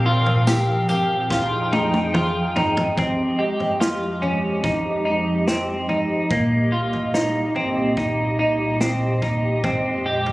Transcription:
Already playing: A#2 F3 C4 A#4 F5
0.06 F4
0.26 floor tom
0.47 G4, snare, tambourine
0.89 G4, floor tom, tambourine
1.30 F2 D#4 F4 G#4 G5, kick, snare
1.73 D#4, high tom
1.94 high tom
2.14 F4, mid tom
2.56 D#4, floor tom
2.77 floor tom
2.97 F2 F3 G#3 C4 G4 D#5, kick, floor tom
3.39 G4
3.60 floor tom
3.80 F4, snare
4.22 C#4, floor tom
4.64 D#4, kick, floor tom
5.05 D#4
5.47 C4, snare
5.89 D#4, floor tom
6.31 C2 A#2 A#3 G4, kick, floor tom
6.72 F4
6.93 floor tom
7.14 D#4, snare
7.56 C4, floor tom
7.97 D#4, kick, floor tom
8.39 D#4
8.81 C4, snare
9.22 D#4, kick, floor tom
9.64 F2 G#3 C4, kick, floor tom
10.06 G4
10.26 floor tom

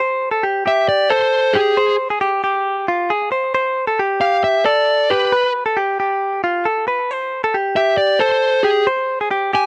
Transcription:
0.00 C5
0.31 A4
0.43 G4
0.66 G4 E5
0.89 D5
1.10 A4 C5
1.53 G4 G#4
1.77 C5
2.10 G#4
2.21 G4
2.44 G4
2.88 F4
3.10 G#4
3.32 C5
3.55 C5
3.87 A4
3.99 G4
4.21 G4 F5
4.44 E5
4.65 A4 D5
5.10 G4 B4
5.32 B4
5.66 A4
5.77 G4
6.00 G4
6.44 F4
6.65 A4
6.88 B4
7.11 C5
7.44 A4
7.54 G4
7.76 G4 E5
7.98 D5
8.19 A4 C5
8.63 G4 G#4
8.87 C5
9.21 G#4
9.31 G4
9.53 G4 G#5

